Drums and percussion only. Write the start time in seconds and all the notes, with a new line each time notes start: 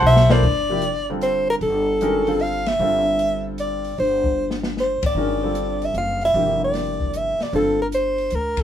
0.16 snare
0.30 snare
0.43 kick, crash
0.82 closed hi-hat
1.21 closed hi-hat
1.61 open hi-hat
2.01 closed hi-hat
2.27 open hi-hat
2.40 open hi-hat
2.66 snare, ride
3.19 closed hi-hat
3.58 closed hi-hat
3.85 open hi-hat
3.98 open hi-hat
4.24 kick
4.51 snare
4.63 snare
4.77 snare
5.03 kick, ride
5.55 closed hi-hat
5.82 open hi-hat
5.95 closed hi-hat
6.21 open hi-hat
6.35 open hi-hat
6.74 snare, open hi-hat
7.01 kick
7.13 closed hi-hat
7.40 snare, open hi-hat
7.53 open hi-hat
7.92 closed hi-hat
8.18 open hi-hat
8.30 closed hi-hat
8.57 kick, ride